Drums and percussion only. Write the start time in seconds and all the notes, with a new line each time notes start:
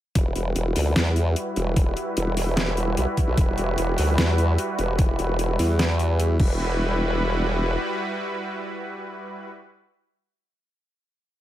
0.15 kick, closed hi-hat
0.36 closed hi-hat
0.56 closed hi-hat
0.76 open hi-hat
0.96 snare, closed hi-hat
1.16 closed hi-hat
1.36 closed hi-hat
1.56 closed hi-hat
1.76 kick, closed hi-hat
1.97 closed hi-hat
2.17 closed hi-hat
2.37 open hi-hat
2.57 snare, closed hi-hat
2.77 closed hi-hat
2.97 closed hi-hat
3.17 kick, closed hi-hat
3.38 kick, closed hi-hat
3.58 closed hi-hat
3.78 closed hi-hat
3.98 open hi-hat
4.18 snare, closed hi-hat
4.38 closed hi-hat
4.58 closed hi-hat
4.79 closed hi-hat
4.99 kick, closed hi-hat
5.19 closed hi-hat
5.39 closed hi-hat
5.59 open hi-hat
5.79 snare, closed hi-hat
5.99 closed hi-hat
6.20 closed hi-hat
6.40 kick, crash